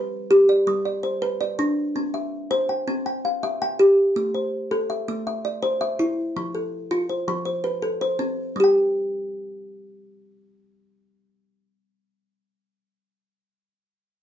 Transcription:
0.00 0.12 G3 medium
0.00 0.49 B4 medium
0.31 0.68 G4 medium
0.49 0.84 D5 medium
0.67 1.04 G3 medium
0.85 1.39 D5 medium
1.03 1.59 C5 medium
1.22 1.59 B4 medium
1.41 1.96 D5 medium
1.59 1.96 D4 medium
1.96 2.33 C4 medium
2.14 2.69 E5 medium
2.51 2.88 C5 medium
2.69 3.05 G5 medium
2.88 3.24 C4 medium
3.06 3.61 G5 medium
3.25 3.80 F5 medium
3.43 3.80 E5 medium
3.62 4.17 G5 medium
3.79 4.16 G4 medium
4.16 4.53 A3 medium
4.34 4.90 C5 medium
4.71 5.26 A4 medium
4.90 5.26 E5 medium
5.08 5.45 A3 medium
5.27 5.80 E5 medium
5.45 6.00 D5 medium
5.62 5.99 C5 medium
5.81 6.36 E5 medium
5.99 6.36 E4 medium
6.36 6.73 F3 medium
6.55 7.09 A4 medium
6.91 7.28 F4 medium
7.09 7.44 C5 medium
7.28 7.64 F3 medium
7.45 8.00 C5 medium
7.64 8.19 B4 medium
7.82 8.19 A4 medium
8.01 8.56 C5 medium
8.19 8.56 C4 medium
8.56 13.54 G3 medium
8.60 13.58 G4 medium
8.60 13.61 G5 medium

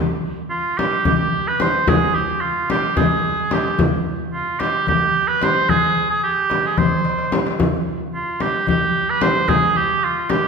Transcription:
0.50 0.79 F4 medium
0.50 darbuka ka soft
0.78 1.06 G4 medium
0.78 darbuka tek medium
0.78 frame drum medium
1.05 1.49 G4 medium
1.05 frame drum medium
1.05 darbuka dum medium
1.48 1.63 B4 medium
1.60 1.90 C5 medium
1.60 darbuka tek medium
1.60 frame drum medium
1.87 2.16 G#4 loud
1.87 frame drum medium
1.87 darbuka dum medium
2.14 2.42 G4 medium
2.41 2.69 F4 medium
2.41 darbuka ka soft
2.70 2.98 G4 medium
2.70 darbuka tek medium
2.70 frame drum medium
2.97 3.55 G#4 medium
2.97 frame drum medium
2.97 darbuka dum medium
3.51 3.80 G4 medium
3.51 darbuka tek medium
3.51 frame drum medium
3.78 darbuka dum medium
3.78 frame drum medium
4.33 4.61 F4 medium
4.33 darbuka ka soft
4.60 4.88 G4 medium
4.60 darbuka tek medium
4.60 frame drum medium
4.87 5.29 G4 medium
4.87 darbuka dum medium
4.87 frame drum medium
5.28 5.45 B4 medium
5.41 5.71 C5 loud
5.41 darbuka tek medium
5.41 frame drum medium
5.69 6.10 G#4 loud
5.69 frame drum medium
5.69 darbuka dum medium
5.95 darbuka ka soft
6.10 6.23 G#4 medium
6.24 6.68 G4 medium
6.50 darbuka tek medium
6.50 frame drum medium
6.66 6.79 G#4 medium
6.78 7.39 C5 medium
6.78 frame drum medium
6.78 darbuka dum medium
7.05 darbuka tek medium
7.19 darbuka ka medium
7.32 darbuka tek medium
7.32 frame drum medium
7.47 darbuka ka medium
7.59 darbuka dum medium
7.59 frame drum medium
8.14 8.43 F4 medium
8.14 darbuka ka soft
8.40 8.68 G4 medium
8.40 darbuka tek medium
8.40 frame drum medium
8.67 9.11 G4 medium
8.67 darbuka dum medium
8.67 frame drum medium
9.10 9.23 B4 medium
9.21 9.50 C5 medium
9.21 darbuka tek medium
9.21 frame drum medium
9.48 9.78 G#4 loud
9.48 frame drum medium
9.48 darbuka dum medium
9.76 10.06 G4 medium
10.03 10.32 F4 medium
10.03 darbuka ka soft
10.29 10.48 G4 medium
10.29 darbuka tek medium
10.29 frame drum medium

